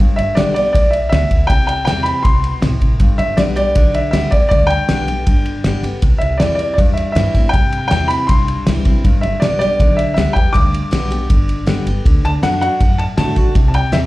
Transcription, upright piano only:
0, 0, Header, 1, 2, 480
1, 0, Start_track
1, 0, Key_signature, 1, "major"
1, 0, Tempo, 376884
1, 1899, Time_signature, 4, 2, 24, 8
1, 17911, End_track
2, 0, Start_track
2, 0, Title_t, "Upright piano"
2, 0, Program_c, 0, 0
2, 207, Note_on_c, 0, 76, 87
2, 448, Note_on_c, 0, 74, 87
2, 461, Note_off_c, 0, 76, 0
2, 673, Note_off_c, 0, 74, 0
2, 692, Note_on_c, 0, 74, 90
2, 909, Note_off_c, 0, 74, 0
2, 928, Note_on_c, 0, 74, 82
2, 1154, Note_on_c, 0, 76, 75
2, 1181, Note_off_c, 0, 74, 0
2, 1375, Note_off_c, 0, 76, 0
2, 1394, Note_on_c, 0, 76, 94
2, 1874, Note_on_c, 0, 79, 106
2, 1901, Note_off_c, 0, 76, 0
2, 2109, Note_off_c, 0, 79, 0
2, 2128, Note_on_c, 0, 79, 96
2, 2337, Note_off_c, 0, 79, 0
2, 2356, Note_on_c, 0, 79, 100
2, 2585, Note_on_c, 0, 83, 102
2, 2616, Note_off_c, 0, 79, 0
2, 2836, Note_on_c, 0, 84, 88
2, 2851, Note_off_c, 0, 83, 0
2, 3294, Note_off_c, 0, 84, 0
2, 4050, Note_on_c, 0, 76, 90
2, 4289, Note_on_c, 0, 74, 84
2, 4304, Note_off_c, 0, 76, 0
2, 4353, Note_off_c, 0, 74, 0
2, 4536, Note_on_c, 0, 74, 91
2, 5026, Note_on_c, 0, 76, 77
2, 5036, Note_off_c, 0, 74, 0
2, 5216, Note_off_c, 0, 76, 0
2, 5235, Note_on_c, 0, 76, 93
2, 5487, Note_on_c, 0, 74, 89
2, 5499, Note_off_c, 0, 76, 0
2, 5696, Note_off_c, 0, 74, 0
2, 5715, Note_on_c, 0, 74, 99
2, 5945, Note_on_c, 0, 79, 114
2, 5979, Note_off_c, 0, 74, 0
2, 7359, Note_off_c, 0, 79, 0
2, 7876, Note_on_c, 0, 76, 85
2, 8116, Note_off_c, 0, 76, 0
2, 8119, Note_on_c, 0, 74, 82
2, 8322, Note_off_c, 0, 74, 0
2, 8341, Note_on_c, 0, 74, 84
2, 8560, Note_off_c, 0, 74, 0
2, 8579, Note_on_c, 0, 74, 83
2, 8643, Note_off_c, 0, 74, 0
2, 8832, Note_on_c, 0, 76, 71
2, 9052, Note_off_c, 0, 76, 0
2, 9071, Note_on_c, 0, 76, 84
2, 9542, Note_on_c, 0, 79, 109
2, 9589, Note_off_c, 0, 76, 0
2, 10013, Note_off_c, 0, 79, 0
2, 10032, Note_on_c, 0, 79, 107
2, 10289, Note_on_c, 0, 83, 114
2, 10302, Note_off_c, 0, 79, 0
2, 10531, Note_on_c, 0, 84, 93
2, 10550, Note_off_c, 0, 83, 0
2, 10990, Note_off_c, 0, 84, 0
2, 11733, Note_on_c, 0, 76, 80
2, 11970, Note_on_c, 0, 74, 88
2, 11992, Note_off_c, 0, 76, 0
2, 12194, Note_off_c, 0, 74, 0
2, 12213, Note_on_c, 0, 74, 110
2, 12692, Note_on_c, 0, 76, 81
2, 12719, Note_off_c, 0, 74, 0
2, 12898, Note_off_c, 0, 76, 0
2, 12917, Note_on_c, 0, 76, 90
2, 13159, Note_on_c, 0, 79, 95
2, 13183, Note_off_c, 0, 76, 0
2, 13398, Note_off_c, 0, 79, 0
2, 13407, Note_on_c, 0, 86, 111
2, 15045, Note_off_c, 0, 86, 0
2, 15600, Note_on_c, 0, 81, 106
2, 15664, Note_off_c, 0, 81, 0
2, 15828, Note_on_c, 0, 78, 100
2, 16045, Note_off_c, 0, 78, 0
2, 16064, Note_on_c, 0, 78, 114
2, 16537, Note_on_c, 0, 81, 92
2, 16559, Note_off_c, 0, 78, 0
2, 16600, Note_off_c, 0, 81, 0
2, 16779, Note_on_c, 0, 81, 97
2, 17227, Note_off_c, 0, 81, 0
2, 17425, Note_on_c, 0, 81, 69
2, 17494, Note_off_c, 0, 81, 0
2, 17508, Note_on_c, 0, 79, 92
2, 17735, Note_on_c, 0, 76, 95
2, 17751, Note_off_c, 0, 79, 0
2, 17799, Note_off_c, 0, 76, 0
2, 17911, End_track
0, 0, End_of_file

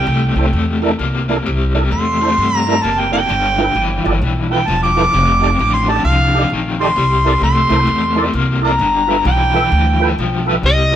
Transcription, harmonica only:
0, 0, Header, 1, 2, 480
1, 0, Start_track
1, 0, Tempo, 459418
1, 1519, Time_signature, 4, 2, 24, 8
1, 11447, End_track
2, 0, Start_track
2, 0, Title_t, "Harmonica"
2, 0, Program_c, 0, 22
2, 0, Note_on_c, 0, 79, 108
2, 372, Note_off_c, 0, 79, 0
2, 2005, Note_on_c, 0, 84, 103
2, 2684, Note_off_c, 0, 84, 0
2, 2684, Note_on_c, 0, 82, 103
2, 2952, Note_on_c, 0, 81, 95
2, 2967, Note_off_c, 0, 82, 0
2, 3125, Note_on_c, 0, 79, 91
2, 3140, Note_off_c, 0, 81, 0
2, 3267, Note_off_c, 0, 79, 0
2, 3273, Note_on_c, 0, 79, 106
2, 4209, Note_off_c, 0, 79, 0
2, 4714, Note_on_c, 0, 79, 92
2, 4883, Note_on_c, 0, 81, 94
2, 4899, Note_off_c, 0, 79, 0
2, 5038, Note_off_c, 0, 81, 0
2, 5046, Note_on_c, 0, 86, 112
2, 5975, Note_off_c, 0, 86, 0
2, 5994, Note_on_c, 0, 84, 97
2, 6158, Note_on_c, 0, 81, 96
2, 6174, Note_off_c, 0, 84, 0
2, 6311, Note_off_c, 0, 81, 0
2, 6317, Note_on_c, 0, 77, 109
2, 6785, Note_off_c, 0, 77, 0
2, 7113, Note_on_c, 0, 84, 103
2, 7737, Note_off_c, 0, 84, 0
2, 7771, Note_on_c, 0, 84, 125
2, 8697, Note_off_c, 0, 84, 0
2, 9034, Note_on_c, 0, 82, 109
2, 9657, Note_off_c, 0, 82, 0
2, 9686, Note_on_c, 0, 79, 108
2, 10614, Note_off_c, 0, 79, 0
2, 11447, End_track
0, 0, End_of_file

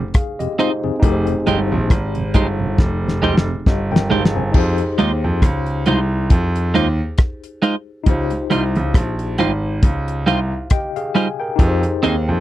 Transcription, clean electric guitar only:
0, 0, Header, 1, 2, 480
1, 0, Start_track
1, 0, Key_signature, -4, "minor"
1, 0, Tempo, 879765
1, 560, Time_signature, 4, 2, 24, 8
1, 6766, End_track
2, 0, Start_track
2, 0, Title_t, "Clean electric guitar"
2, 0, Program_c, 0, 27
2, 320, Note_on_c, 0, 60, 81
2, 323, Note_on_c, 0, 63, 93
2, 326, Note_on_c, 0, 68, 96
2, 328, Note_on_c, 0, 72, 97
2, 384, Note_off_c, 0, 60, 0
2, 385, Note_off_c, 0, 63, 0
2, 387, Note_off_c, 0, 68, 0
2, 388, Note_off_c, 0, 72, 0
2, 800, Note_on_c, 0, 56, 92
2, 804, Note_on_c, 0, 63, 87
2, 806, Note_on_c, 0, 67, 84
2, 809, Note_on_c, 0, 72, 94
2, 864, Note_off_c, 0, 56, 0
2, 866, Note_off_c, 0, 63, 0
2, 867, Note_off_c, 0, 67, 0
2, 868, Note_off_c, 0, 72, 0
2, 1279, Note_on_c, 0, 56, 80
2, 1282, Note_on_c, 0, 63, 88
2, 1284, Note_on_c, 0, 67, 78
2, 1287, Note_on_c, 0, 72, 91
2, 1343, Note_off_c, 0, 56, 0
2, 1345, Note_off_c, 0, 63, 0
2, 1346, Note_off_c, 0, 67, 0
2, 1347, Note_off_c, 0, 72, 0
2, 1757, Note_on_c, 0, 56, 89
2, 1761, Note_on_c, 0, 63, 90
2, 1764, Note_on_c, 0, 67, 97
2, 1767, Note_on_c, 0, 72, 100
2, 1822, Note_off_c, 0, 56, 0
2, 1824, Note_off_c, 0, 63, 0
2, 1826, Note_off_c, 0, 67, 0
2, 1827, Note_off_c, 0, 72, 0
2, 2237, Note_on_c, 0, 56, 89
2, 2241, Note_on_c, 0, 63, 90
2, 2244, Note_on_c, 0, 67, 90
2, 2245, Note_on_c, 0, 72, 98
2, 2302, Note_off_c, 0, 56, 0
2, 2304, Note_off_c, 0, 63, 0
2, 2306, Note_off_c, 0, 67, 0
2, 2306, Note_off_c, 0, 72, 0
2, 2718, Note_on_c, 0, 56, 90
2, 2721, Note_on_c, 0, 63, 83
2, 2724, Note_on_c, 0, 65, 86
2, 2726, Note_on_c, 0, 72, 96
2, 2783, Note_off_c, 0, 56, 0
2, 2784, Note_off_c, 0, 63, 0
2, 2786, Note_off_c, 0, 65, 0
2, 2787, Note_off_c, 0, 72, 0
2, 3199, Note_on_c, 0, 56, 81
2, 3203, Note_on_c, 0, 63, 88
2, 3205, Note_on_c, 0, 65, 93
2, 3209, Note_on_c, 0, 72, 99
2, 3263, Note_off_c, 0, 56, 0
2, 3266, Note_off_c, 0, 63, 0
2, 3266, Note_off_c, 0, 65, 0
2, 3268, Note_off_c, 0, 72, 0
2, 3678, Note_on_c, 0, 56, 83
2, 3681, Note_on_c, 0, 63, 89
2, 3684, Note_on_c, 0, 65, 91
2, 3687, Note_on_c, 0, 72, 108
2, 3743, Note_off_c, 0, 56, 0
2, 3744, Note_off_c, 0, 63, 0
2, 3746, Note_off_c, 0, 65, 0
2, 3747, Note_off_c, 0, 72, 0
2, 4158, Note_on_c, 0, 56, 82
2, 4161, Note_on_c, 0, 63, 97
2, 4164, Note_on_c, 0, 65, 92
2, 4166, Note_on_c, 0, 72, 96
2, 4223, Note_off_c, 0, 56, 0
2, 4224, Note_off_c, 0, 63, 0
2, 4226, Note_off_c, 0, 65, 0
2, 4227, Note_off_c, 0, 72, 0
2, 4639, Note_on_c, 0, 55, 81
2, 4643, Note_on_c, 0, 63, 82
2, 4646, Note_on_c, 0, 65, 85
2, 4647, Note_on_c, 0, 72, 87
2, 4703, Note_off_c, 0, 55, 0
2, 4705, Note_off_c, 0, 63, 0
2, 4707, Note_off_c, 0, 65, 0
2, 4708, Note_off_c, 0, 72, 0
2, 5120, Note_on_c, 0, 55, 81
2, 5124, Note_on_c, 0, 63, 84
2, 5126, Note_on_c, 0, 65, 92
2, 5130, Note_on_c, 0, 72, 99
2, 5184, Note_off_c, 0, 55, 0
2, 5186, Note_off_c, 0, 63, 0
2, 5187, Note_off_c, 0, 65, 0
2, 5189, Note_off_c, 0, 72, 0
2, 5600, Note_on_c, 0, 55, 84
2, 5603, Note_on_c, 0, 63, 87
2, 5605, Note_on_c, 0, 65, 100
2, 5608, Note_on_c, 0, 72, 101
2, 5664, Note_off_c, 0, 55, 0
2, 5666, Note_off_c, 0, 63, 0
2, 5667, Note_off_c, 0, 65, 0
2, 5668, Note_off_c, 0, 72, 0
2, 6082, Note_on_c, 0, 55, 91
2, 6086, Note_on_c, 0, 63, 97
2, 6088, Note_on_c, 0, 65, 98
2, 6090, Note_on_c, 0, 72, 93
2, 6146, Note_off_c, 0, 55, 0
2, 6147, Note_off_c, 0, 63, 0
2, 6149, Note_off_c, 0, 65, 0
2, 6150, Note_off_c, 0, 72, 0
2, 6561, Note_on_c, 0, 60, 93
2, 6565, Note_on_c, 0, 63, 90
2, 6568, Note_on_c, 0, 68, 94
2, 6569, Note_on_c, 0, 72, 103
2, 6625, Note_off_c, 0, 60, 0
2, 6627, Note_off_c, 0, 63, 0
2, 6628, Note_off_c, 0, 68, 0
2, 6629, Note_off_c, 0, 72, 0
2, 6766, End_track
0, 0, End_of_file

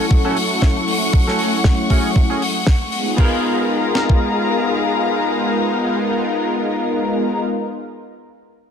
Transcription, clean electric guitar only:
0, 0, Header, 1, 3, 480
1, 0, Start_track
1, 0, Tempo, 512821
1, 1059, Time_signature, 4, 2, 24, 8
1, 8150, End_track
2, 0, Start_track
2, 0, Title_t, "Clean electric guitar"
2, 0, Program_c, 0, 27
2, 233, Note_on_c, 0, 69, 119
2, 237, Note_on_c, 0, 66, 88
2, 240, Note_on_c, 0, 61, 99
2, 339, Note_off_c, 0, 61, 0
2, 340, Note_off_c, 0, 66, 0
2, 340, Note_off_c, 0, 69, 0
2, 1192, Note_on_c, 0, 69, 88
2, 1196, Note_on_c, 0, 66, 64
2, 1201, Note_on_c, 0, 61, 75
2, 1486, Note_off_c, 0, 61, 0
2, 1486, Note_off_c, 0, 66, 0
2, 1487, Note_off_c, 0, 69, 0
2, 1780, Note_on_c, 0, 68, 77
2, 1784, Note_on_c, 0, 66, 62
2, 1788, Note_on_c, 0, 61, 70
2, 1967, Note_off_c, 0, 61, 0
2, 1968, Note_off_c, 0, 66, 0
2, 1968, Note_off_c, 0, 68, 0
2, 2152, Note_on_c, 0, 68, 121
2, 2155, Note_on_c, 0, 66, 86
2, 2159, Note_on_c, 0, 61, 85
2, 2259, Note_off_c, 0, 61, 0
2, 2259, Note_off_c, 0, 66, 0
2, 2260, Note_off_c, 0, 68, 0
2, 2962, Note_on_c, 0, 59, 75
2, 2974, Note_on_c, 0, 65, 68
2, 2987, Note_on_c, 0, 68, 67
2, 2999, Note_on_c, 0, 70, 86
2, 6916, Note_off_c, 0, 59, 0
2, 6928, Note_off_c, 0, 65, 0
2, 6941, Note_off_c, 0, 68, 0
2, 6953, Note_off_c, 0, 70, 0
2, 8150, End_track
3, 0, Start_track
3, 0, Title_t, "Muted clean electric guitar strokes"
3, 474, Note_on_c, 9, 29, 30
3, 567, Note_off_c, 9, 29, 0
3, 577, Note_on_c, 9, 29, 81
3, 670, Note_off_c, 9, 29, 0
3, 712, Note_on_c, 9, 29, 30
3, 806, Note_off_c, 9, 29, 0
3, 1056, Note_on_c, 9, 29, 110
3, 1150, Note_off_c, 9, 29, 0
3, 2394, Note_on_c, 9, 29, 30
3, 2488, Note_off_c, 9, 29, 0
3, 2499, Note_on_c, 9, 29, 82
3, 2593, Note_off_c, 9, 29, 0
3, 2634, Note_on_c, 9, 29, 27
3, 2727, Note_off_c, 9, 29, 0
3, 8150, End_track
0, 0, End_of_file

